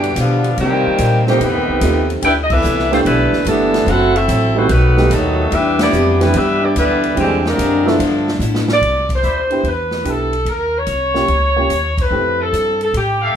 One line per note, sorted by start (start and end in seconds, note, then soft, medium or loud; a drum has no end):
0.00 0.15 G2 medium
0.00 0.15 B2 medium
0.00 0.15 D3 medium
0.00 0.15 E3 medium
0.00 0.14 G3 medium
0.00 0.15 B3 medium
0.00 0.15 D4 medium
0.00 0.15 G4 medium
0.00 ride medium
0.16 0.57 B2 medium
0.16 0.59 B2 medium
0.16 0.59 D3 medium
0.16 0.46 E3 medium
0.16 0.59 F3 medium
0.16 0.59 G3 medium
0.16 0.46 B3 medium
0.16 0.60 B3 medium
0.16 0.47 D4 medium
0.16 0.60 D4 medium
0.16 0.60 F4 medium
0.16 0.47 G4 medium
0.16 kick soft
0.16 hi-hat pedal medium
0.16 ride medium
0.44 ride soft
0.58 1.24 A#2 medium
0.58 0.84 C3 medium
0.58 0.87 C3 soft
0.58 1.24 D#3 medium
0.58 0.88 G3 soft
0.58 1.24 G3 medium
0.58 1.24 A#3 medium
0.58 0.89 A#3 soft
0.58 1.24 C4 medium
0.58 0.89 D#4 medium
0.58 1.24 G4 loud
0.58 kick soft
0.58 ride medium
0.87 muted upright bass stroke soft
0.98 1.39 A#2 medium
0.98 1.29 C3 medium
0.98 1.29 G3 medium
0.98 1.29 A#3 medium
0.98 1.30 D#4 medium
0.98 kick soft
0.98 hi-hat pedal medium
0.98 ride medium
1.27 1.40 D#3 medium
1.27 1.40 G3 medium
1.27 1.40 A3 medium
1.27 1.41 A#3 medium
1.27 1.40 C4 medium
1.27 1.41 D#4 medium
1.27 1.41 F4 medium
1.27 1.41 G4 medium
1.27 1.41 C5 medium
1.27 snare soft
1.40 1.54 F2 medium
1.40 2.10 C3 medium
1.40 2.10 D#3 medium
1.40 1.70 F3 soft
1.40 1.70 A3 medium
1.40 2.11 A3 medium
1.40 2.10 B3 medium
1.40 2.11 D#4 medium
1.40 1.71 D#4 soft
1.40 2.11 G4 medium
1.40 1.71 G4 soft
1.40 2.11 B4 medium
1.40 kick soft
1.40 ride medium
1.54 1.68 D#2 medium
1.68 1.81 C2 medium
1.81 2.22 D#2 medium
1.81 2.11 F3 medium
1.81 2.11 A3 medium
1.81 2.24 A3 soft
1.81 2.24 C4 soft
1.81 2.11 D#4 medium
1.81 2.24 D#4 soft
1.81 2.24 F4 soft
1.81 2.12 G4 medium
1.81 2.24 G4 medium
1.81 kick soft
1.81 hi-hat pedal medium
1.81 ride medium
2.10 ride soft
2.21 2.63 D2 medium
2.21 2.51 G3 soft
2.21 2.52 B3 soft
2.21 2.31 D4 medium
2.21 2.31 E4 loud
2.21 2.53 E4 medium
2.21 2.32 E4 medium
2.21 2.31 G4 loud
2.21 2.53 A4 medium
2.21 2.32 B4 medium
2.21 2.32 D5 medium
2.21 2.32 G5 loud
2.21 kick soft
2.21 ride medium
2.42 2.52 D#5 medium
2.50 2.93 E3 medium
2.50 2.92 B3 medium
2.50 2.92 D4 medium
2.50 2.93 E4 medium
2.50 2.93 A4 medium
2.50 2.93 B4 medium
2.50 2.93 E5 loud
2.50 kick medium
2.50 crash medium
2.62 3.04 C2 medium
2.62 2.93 G3 medium
2.62 2.93 B3 medium
2.62 2.94 E4 medium
2.62 2.94 A4 medium
2.62 hi-hat pedal medium
2.79 snare soft
2.91 3.04 A3 medium
2.91 2.99 A3 medium
2.91 3.04 B3 medium
2.91 2.98 C4 medium
2.91 3.04 D4 medium
2.91 2.99 D4 medium
2.91 3.05 E4 medium
2.91 2.99 F4 medium
2.91 3.05 G4 medium
2.91 2.99 C5 medium
2.91 snare soft
2.91 ride soft
3.05 3.31 B1 medium
3.05 3.44 D3 medium
3.05 3.44 E3 medium
3.05 3.34 G3 soft
3.05 3.44 A3 medium
3.05 3.44 B3 medium
3.05 3.35 B3 soft
3.05 3.44 D4 medium
3.05 3.44 E4 medium
3.05 3.36 E4 soft
3.05 3.36 A4 medium
3.05 3.44 B4 medium
3.05 kick soft
3.05 ride medium
3.33 muted upright bass stroke soft
3.33 snare soft
3.45 3.86 G1 medium
3.45 3.89 D3 medium
3.45 3.89 E3 medium
3.45 3.75 G3 medium
3.45 3.88 A3 medium
3.45 3.87 A3 medium
3.45 3.75 B3 medium
3.45 3.88 B3 soft
3.45 3.89 B3 medium
3.45 3.88 D4 soft
3.45 3.76 E4 medium
3.45 3.88 E4 soft
3.45 3.76 A4 medium
3.45 3.88 A4 medium
3.45 kick soft
3.45 hi-hat pedal soft
3.45 ride medium
3.49 3.89 E3 medium
3.49 3.89 D4 medium
3.74 snare medium
3.74 ride soft
3.86 4.27 F#1 medium
3.86 4.16 F#3 soft
3.86 4.15 A3 medium
3.86 4.16 C4 soft
3.86 4.15 C4 medium
3.86 4.17 E4 medium
3.86 4.16 E4 medium
3.86 4.16 F#4 loud
3.86 4.18 A4 medium
3.86 4.15 A4 medium
3.86 4.16 C5 medium
3.86 4.16 F#5 loud
3.86 kick soft
3.86 ride medium
4.16 4.56 A3 medium
4.16 4.57 C4 medium
4.16 4.58 E4 medium
4.16 4.56 F#4 medium
4.16 4.57 A4 medium
4.16 4.57 E5 loud
4.16 ride soft
4.28 4.68 A1 medium
4.28 4.58 F#3 medium
4.28 4.58 C4 medium
4.28 4.59 E4 medium
4.28 4.59 A4 medium
4.28 kick soft
4.28 hi-hat pedal medium
4.28 ride medium
4.55 4.70 E3 medium
4.55 4.68 G3 medium
4.55 4.69 A3 medium
4.55 4.70 A3 medium
4.55 4.69 B3 medium
4.55 4.70 C4 medium
4.55 4.69 D#4 medium
4.55 4.70 E4 medium
4.55 4.69 F#4 medium
4.55 4.70 F#4 medium
4.55 4.69 C5 medium
4.69 5.09 B1 medium
4.69 4.99 B2 soft
4.69 5.10 D#3 medium
4.69 5.10 F#3 medium
4.69 4.99 G3 soft
4.69 5.00 A3 medium
4.69 5.12 A3 medium
4.69 5.11 B3 medium
4.69 5.00 D#4 medium
4.69 5.10 D#4 medium
4.69 5.12 F#4 medium
4.69 5.12 B4 loud
4.69 kick soft
4.69 ride medium
4.97 5.10 G3 medium
4.97 5.10 A3 medium
4.97 5.10 B3 medium
4.97 5.10 D#4 medium
4.97 5.10 G4 medium
4.97 snare medium
5.10 5.51 D#2 medium
5.10 5.41 B2 medium
5.10 5.52 D#3 medium
5.10 5.52 F#3 medium
5.10 5.53 F#3 medium
5.10 5.41 G3 medium
5.10 5.53 A3 medium
5.10 5.41 A3 medium
5.10 5.53 B3 medium
5.10 5.53 D#4 medium
5.10 5.53 A4 medium
5.10 kick soft
5.10 hi-hat pedal medium
5.10 ride medium
5.14 5.42 D#4 medium
5.51 5.92 E2 medium
5.51 5.81 E3 soft
5.51 5.78 G3 medium
5.51 5.78 B3 medium
5.51 5.82 B3 soft
5.51 5.82 D4 medium
5.51 5.81 D4 medium
5.51 5.79 E4 medium
5.51 5.82 G4 medium
5.51 5.79 G4 medium
5.51 5.81 B4 medium
5.51 5.81 E5 loud
5.51 kick soft
5.51 ride medium
5.79 6.18 G3 medium
5.79 6.18 B3 medium
5.79 6.19 B3 medium
5.79 6.18 D4 medium
5.79 6.19 E4 medium
5.79 6.19 G4 medium
5.79 6.19 D5 loud
5.79 snare medium
5.79 ride medium
5.91 6.33 F2 loud
5.91 6.22 E3 medium
5.91 6.22 B3 medium
5.91 6.22 D4 medium
5.91 6.23 G4 medium
5.91 hi-hat pedal medium
6.20 6.35 D3 medium
6.20 6.33 E3 medium
6.20 6.33 G3 medium
6.20 6.34 G3 medium
6.20 6.35 G3 medium
6.20 6.33 B3 medium
6.20 6.34 B3 medium
6.20 6.34 D4 medium
6.20 6.35 D4 medium
6.20 6.35 E4 medium
6.20 6.34 G4 medium
6.20 6.35 B4 medium
6.20 snare soft
6.20 ride medium
6.33 6.75 G2 medium
6.33 6.63 E3 soft
6.33 6.60 G3 medium
6.33 6.64 B3 soft
6.33 6.60 B3 medium
6.33 6.64 D4 soft
6.33 6.64 D4 medium
6.33 6.63 E4 medium
6.33 6.65 G4 medium
6.33 6.63 G4 medium
6.33 6.64 B4 medium
6.33 6.64 E5 loud
6.33 kick soft
6.33 ride medium
6.61 6.75 G3 medium
6.61 6.75 B3 medium
6.61 6.77 B3 medium
6.61 6.75 D4 medium
6.61 6.77 E4 medium
6.61 6.77 G4 medium
6.61 6.77 D5 medium
6.76 7.16 D2 medium
6.76 7.14 D3 medium
6.76 7.06 E3 medium
6.76 7.15 G3 medium
6.76 7.15 B3 medium
6.76 7.06 B3 medium
6.76 7.15 D4 medium
6.76 7.06 D4 medium
6.76 7.15 E4 medium
6.76 7.06 G4 medium
6.76 7.15 B4 medium
6.76 kick soft
6.76 hi-hat pedal medium
6.76 ride medium
7.03 ride soft
7.15 7.57 E2 medium
7.15 7.44 D3 medium
7.15 7.41 E3 medium
7.15 7.47 E3 medium
7.15 7.41 G#3 soft
7.15 7.42 C4 soft
7.15 7.42 D4 soft
7.15 7.42 G4 medium
7.15 kick soft
7.15 ride medium
7.19 7.44 C3 medium
7.19 7.44 D3 medium
7.19 7.44 G3 medium
7.19 7.44 G#3 medium
7.19 7.47 C4 soft
7.19 7.44 C4 medium
7.19 7.48 D4 soft
7.19 7.44 G4 loud
7.19 7.48 G#4 medium
7.45 7.86 C3 medium
7.45 7.84 D3 medium
7.45 7.87 G#3 medium
7.45 7.86 A#3 medium
7.45 7.87 D4 medium
7.45 7.87 G4 medium
7.45 7.87 A#4 medium
7.45 snare medium
7.58 7.98 F#2 medium
7.58 7.88 E3 medium
7.58 7.89 C4 medium
7.58 7.89 D4 medium
7.58 7.89 G#4 medium
7.58 kick soft
7.58 hi-hat pedal medium
7.58 ride medium
7.85 8.40 D3 medium
7.85 7.97 F3 medium
7.85 8.40 F3 medium
7.85 8.42 F3 medium
7.85 8.40 A3 medium
7.85 7.98 A3 medium
7.85 7.98 B3 medium
7.85 8.42 B3 medium
7.85 7.98 D4 medium
7.85 7.98 E4 medium
7.85 8.42 A4 medium
7.85 snare soft
7.89 8.42 D4 medium
7.99 8.39 G2 medium
7.99 8.29 G2 soft
7.99 8.29 F3 medium
7.99 8.30 B3 soft
7.99 8.30 E4 soft
7.99 kick soft
7.99 ride medium
8.28 snare soft
8.39 8.69 G2 medium
8.39 8.80 A2 medium
8.39 8.70 F3 medium
8.39 8.70 B3 medium
8.39 8.71 E4 medium
8.39 hi-hat pedal medium
8.55 snare medium
8.68 snare medium
8.73 9.09 D5 medium
8.82 9.22 C2 medium
8.82 kick medium
8.82 ride medium
9.09 kick medium
9.09 ride medium
9.14 9.67 C5 medium
9.23 9.63 D2 medium
9.23 9.42 B4 medium
9.23 9.42 C5 medium
9.23 9.42 D5 medium
9.23 9.42 E5 medium
9.23 hi-hat pedal soft
9.50 9.63 B3 medium
9.50 9.63 D4 soft
9.50 9.63 E4 soft
9.50 9.64 G4 medium
9.50 ride soft
9.63 10.04 E2 medium
9.63 kick soft
9.63 ride soft
9.68 10.07 B4 medium
9.91 snare soft
10.04 10.45 B1 medium
10.04 10.30 B3 soft
10.04 10.30 D4 soft
10.04 10.30 E4 soft
10.04 10.31 G4 medium
10.04 kick soft
10.04 hi-hat pedal soft
10.04 ride soft
10.09 10.48 A4 medium
10.33 ride soft
10.45 10.86 D#2 medium
10.45 10.75 A#4 medium
10.45 kick soft
10.45 ride medium
10.78 12.00 C#5 medium
10.87 11.27 C2 medium
10.87 kick soft
10.87 hi-hat pedal medium
10.87 ride soft
11.14 11.27 A#3 medium
11.14 11.27 C#4 medium
11.14 11.28 F4 medium
11.14 11.28 G4 medium
11.14 snare soft
11.28 11.69 C#2 medium
11.28 kick soft
11.28 ride soft
11.56 11.69 A#3 medium
11.56 11.69 C#4 medium
11.56 11.69 F4 medium
11.56 11.70 G4 medium
11.69 12.10 D#2 medium
11.69 kick soft
11.69 hi-hat pedal medium
11.69 ride medium
11.98 12.41 B4 medium
11.98 kick medium
11.98 ride medium
12.10 12.51 F2 medium
12.10 12.75 A3 soft
12.10 12.75 C4 soft
12.10 12.75 E4 soft
12.10 12.75 G4 soft
12.42 12.82 A4 medium
12.52 12.93 G2 medium
12.52 kick soft
12.52 hi-hat pedal soft
12.52 ride medium
12.81 12.94 A4 medium
12.81 ride soft
12.93 13.34 A2 medium
12.93 13.33 G4 medium
12.93 kick soft
12.93 ride medium
13.22 13.36 G4 medium
13.22 13.36 A4 medium
13.22 13.36 E5 medium
13.22 13.36 F5 medium